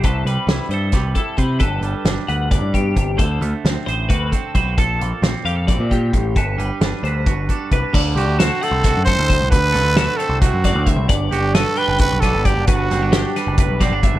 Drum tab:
CC |-------|-------|-------|-------|
HH |xxxxxxx|xxxxxxx|xxxxxxx|xxxxxxx|
SD |--o-o--|--o----|--o----|--o----|
BD |o---ooo|o---ooo|o---ooo|o---ooo|

CC |-------|x------|-------|-------|
HH |xxxxxxx|-xxxxxx|xxxxxxx|xxxxxxx|
SD |--o----|--o-oo-|-oo--o-|--o--o-|
BD |o---ooo|o---ooo|o---ooo|o---ooo|

CC |-------|
HH |xxxxxxx|
SD |-ooo-o-|
BD |o---ooo|